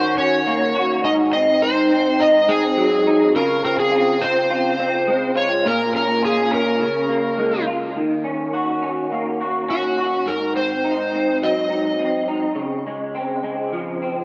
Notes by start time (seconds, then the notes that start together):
Already playing: D#3 C#4 F#4 C5
0.17 C#4 C#5
0.47 A#3
0.75 F#4
1.04 G#2 D#4 D#5
1.33 C4 D#5
1.62 D#4 C5
1.91 C4
2.19 D#4 D#5
2.48 C4 G#4
2.77 F#3
3.07 D#4
3.36 C#3 F4 A#4
3.64 C4 A#4
3.80 G#4
3.91 F4
4.21 C4 C5
4.50 F4
4.79 C4
5.07 G#3
5.35 F4 C#5
5.65 A#2 F4 A#4
5.93 C#4 A#4
6.22 F4 G#4
6.51 C#4 A#4
6.80 C#3
7.09 A#3
7.38 G#3
7.67 F4
7.96 D#3
8.24 C#4
8.53 F#4
8.82 C#4
9.12 A#3
9.41 F#4
9.68 C#4 F#4
9.98 F#4
10.26 G#2 A#4
10.54 C4 C5
10.84 D#4
11.13 C4
11.42 F#3 D#5
11.70 D#4
11.99 C4
12.28 D#4
12.55 C#3
12.86 G#3
13.15 C4
13.43 G#3
13.73 F3
14.02 C4